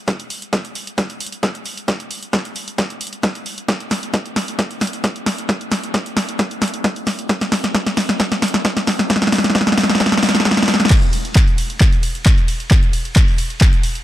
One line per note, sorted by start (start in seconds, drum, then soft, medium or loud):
0.08 kick loud
0.08 snare medium
0.08 closed hi-hat medium
0.20 closed hi-hat medium
0.30 open hi-hat loud
0.42 closed hi-hat medium
0.53 kick loud
0.53 snare medium
0.53 closed hi-hat medium
0.65 closed hi-hat medium
0.75 open hi-hat loud
0.87 closed hi-hat medium
0.98 kick loud
0.98 snare medium
0.98 closed hi-hat medium
1.10 closed hi-hat medium
1.20 open hi-hat loud
1.26 closed hi-hat medium
1.32 closed hi-hat medium
1.43 kick loud
1.43 snare medium
1.43 closed hi-hat medium
1.55 closed hi-hat medium
1.66 open hi-hat medium
1.77 closed hi-hat medium
1.88 kick loud
1.88 snare medium
1.88 closed hi-hat medium
2.00 closed hi-hat medium
2.11 open hi-hat loud
2.23 closed hi-hat medium
2.33 kick loud
2.33 snare medium
2.33 closed hi-hat medium
2.45 closed hi-hat soft
2.56 open hi-hat loud
2.68 closed hi-hat medium
2.78 kick loud
2.78 snare medium
2.78 closed hi-hat medium
2.90 closed hi-hat medium
3.01 open hi-hat loud
3.07 closed hi-hat medium
3.13 closed hi-hat medium
3.23 kick loud
3.23 snare medium
3.23 closed hi-hat medium
3.35 closed hi-hat soft
3.46 open hi-hat medium
3.58 closed hi-hat medium
3.68 kick loud
3.68 snare medium
3.68 closed hi-hat medium
3.80 closed hi-hat soft
3.91 snare medium
3.91 open hi-hat loud
4.03 closed hi-hat soft
4.14 kick loud
4.14 snare medium
4.14 closed hi-hat medium
4.26 closed hi-hat soft
4.36 snare medium
4.36 open hi-hat medium
4.48 closed hi-hat medium
4.59 kick loud
4.59 snare medium
4.59 closed hi-hat medium
4.71 closed hi-hat soft
4.81 snare medium
4.81 open hi-hat loud
4.87 closed hi-hat medium
4.93 closed hi-hat medium
5.04 kick loud
5.04 snare medium
5.04 closed hi-hat medium
5.16 closed hi-hat soft
5.26 snare medium
5.26 open hi-hat medium
5.38 closed hi-hat soft
5.49 kick loud
5.49 snare medium
5.49 closed hi-hat medium
5.61 closed hi-hat soft
5.72 snare medium
5.72 open hi-hat loud
5.83 closed hi-hat soft
5.94 kick loud
5.94 snare medium
5.94 closed hi-hat medium
6.06 closed hi-hat medium
6.17 snare medium
6.17 open hi-hat medium
6.29 closed hi-hat medium
6.39 kick loud
6.39 snare medium
6.39 closed hi-hat medium
6.51 closed hi-hat medium
6.62 snare medium
6.62 open hi-hat loud
6.68 closed hi-hat medium
6.74 closed hi-hat medium
6.84 kick loud
6.84 snare medium
6.84 closed hi-hat medium
6.96 closed hi-hat soft
7.07 snare medium
7.07 open hi-hat medium
7.19 closed hi-hat medium
7.29 kick loud
7.29 snare medium
7.29 closed hi-hat medium
7.41 snare medium
7.41 closed hi-hat medium
7.52 snare medium
7.52 open hi-hat loud
7.64 snare medium
7.64 closed hi-hat medium
7.75 kick loud
7.75 snare medium
7.75 closed hi-hat medium
7.86 snare medium
7.86 closed hi-hat medium
7.97 snare loud
7.97 open hi-hat medium
8.09 snare medium
8.09 closed hi-hat medium
8.20 kick loud
8.20 snare loud
8.20 closed hi-hat medium
8.32 snare medium
8.32 closed hi-hat medium
8.42 snare loud
8.42 open hi-hat loud
8.48 closed hi-hat medium
8.54 snare medium
8.54 closed hi-hat medium
8.65 kick loud
8.65 snare loud
8.65 closed hi-hat medium
8.77 snare medium
8.77 closed hi-hat medium
8.87 snare loud
8.87 open hi-hat medium
8.99 snare medium
8.99 closed hi-hat medium
9.10 kick loud
9.10 snare loud
9.10 closed hi-hat medium
9.16 snare medium
9.22 snare medium
9.22 closed hi-hat medium
9.27 snare medium
9.32 snare loud
9.32 open hi-hat loud
9.38 snare medium
9.44 snare medium
9.44 closed hi-hat medium
9.50 snare medium
9.55 kick loud
9.55 snare loud
9.55 closed hi-hat medium
9.61 snare medium
9.67 snare medium
9.67 closed hi-hat medium
9.72 snare medium
9.78 snare loud
9.78 open hi-hat loud
9.83 snare medium
9.90 snare loud
9.90 closed hi-hat medium
9.95 snare loud
10.00 kick loud
10.00 snare loud
10.00 closed hi-hat medium
10.06 snare loud
10.12 snare medium
10.12 closed hi-hat medium
10.17 snare loud
10.23 snare loud
10.23 open hi-hat loud
10.29 snare loud
10.29 closed hi-hat medium
10.35 snare loud
10.35 closed hi-hat medium
10.40 snare loud
10.45 kick loud
10.45 snare loud
10.45 closed hi-hat medium
10.51 snare loud
10.57 snare medium
10.57 closed hi-hat medium
10.62 snare loud
10.68 snare loud
10.68 open hi-hat medium
10.74 snare loud
10.80 snare medium
10.80 closed hi-hat medium
10.85 snare loud
10.90 kick loud
10.90 clap loud
10.90 closed hi-hat medium
10.90 crash loud
10.90 ride medium
11.02 closed hi-hat medium
11.13 open hi-hat loud
11.13 ride medium
11.25 closed hi-hat medium
11.35 kick loud
11.35 clap loud
11.35 closed hi-hat medium
11.35 ride medium
11.47 closed hi-hat medium
11.58 open hi-hat loud
11.58 ride medium
11.70 closed hi-hat medium
11.81 kick loud
11.81 clap loud
11.81 closed hi-hat medium
11.81 ride medium
11.93 closed hi-hat medium
12.03 open hi-hat loud
12.03 ride medium
12.15 closed hi-hat medium
12.26 kick loud
12.26 clap loud
12.26 closed hi-hat medium
12.26 ride medium
12.38 closed hi-hat medium
12.48 open hi-hat loud
12.48 ride medium
12.60 closed hi-hat medium
12.71 kick loud
12.71 clap loud
12.71 closed hi-hat medium
12.71 ride medium
12.83 closed hi-hat medium
12.93 open hi-hat loud
12.93 ride medium
13.05 closed hi-hat medium
13.16 kick loud
13.16 clap loud
13.16 closed hi-hat medium
13.16 ride medium
13.28 open hi-hat medium
13.38 open hi-hat loud
13.38 ride medium
13.50 closed hi-hat medium
13.61 kick loud
13.61 clap loud
13.61 closed hi-hat medium
13.73 closed hi-hat medium
13.83 open hi-hat loud
13.83 ride medium
13.95 closed hi-hat medium